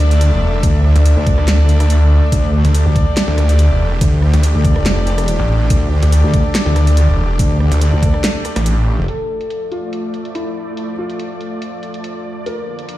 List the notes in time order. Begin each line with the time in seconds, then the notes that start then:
Already playing: D2 A3 D4 A4 D5 E5
0.11 closed hi-hat
0.21 closed hi-hat
0.32 E1
0.63 D2, kick, closed hi-hat
0.84 D4 A4 D5, cross-stick
0.96 D2, closed hi-hat
1.06 closed hi-hat
1.17 D2
1.27 kick, closed hi-hat
1.38 D2, cross-stick
1.48 snare, clap, closed hi-hat
1.69 closed hi-hat
1.80 cross-stick, closed hi-hat
1.90 closed hi-hat
2.32 D2 G4, kick, closed hi-hat
2.53 D4 A4 D5
2.65 D2, closed hi-hat
2.75 closed hi-hat
2.86 D2
2.96 kick, closed hi-hat
3.17 snare, clap, closed hi-hat
3.28 D2
3.38 cross-stick, closed hi-hat
3.49 closed hi-hat
3.59 closed hi-hat
3.70 E1
4.01 D2, kick, closed hi-hat
4.22 D4 A4 D5, cross-stick
4.34 D2, closed hi-hat
4.43 closed hi-hat
4.55 D2
4.65 kick, closed hi-hat
4.76 F1, cross-stick
4.86 snare, clap, closed hi-hat
5.07 closed hi-hat
5.18 E1, cross-stick, closed hi-hat
5.28 closed hi-hat
5.39 A1
5.70 D2, kick, closed hi-hat
5.91 D4 A4 D5
6.03 D2, closed hi-hat
6.12 closed hi-hat
6.24 D2
6.34 kick, closed hi-hat
6.55 snare, clap, closed hi-hat
6.66 D2
6.76 cross-stick, closed hi-hat
6.87 closed hi-hat
6.97 closed hi-hat
7.08 E1
7.39 D2, kick, closed hi-hat
7.60 D4 A4 D5, cross-stick
7.72 D2, closed hi-hat
7.82 closed hi-hat
7.93 D2
8.03 kick, closed hi-hat
8.14 cross-stick
8.24 snare, clap, closed hi-hat
8.45 cross-stick, closed hi-hat
8.56 A1, cross-stick, closed hi-hat
8.66 closed hi-hat
8.98 F1
9.08 F3 A3 A4 D5, closed hi-hat
9.41 closed hi-hat
9.50 closed hi-hat
9.72 F4, closed hi-hat
9.93 closed hi-hat
10.14 closed hi-hat
10.25 closed hi-hat
10.35 E4, closed hi-hat
10.77 closed hi-hat
10.98 F4
11.10 closed hi-hat
11.19 closed hi-hat
11.41 closed hi-hat
11.62 closed hi-hat
11.83 closed hi-hat
11.94 closed hi-hat
12.04 closed hi-hat
12.46 D3 A#3 A#4, closed hi-hat
12.79 closed hi-hat
12.89 closed hi-hat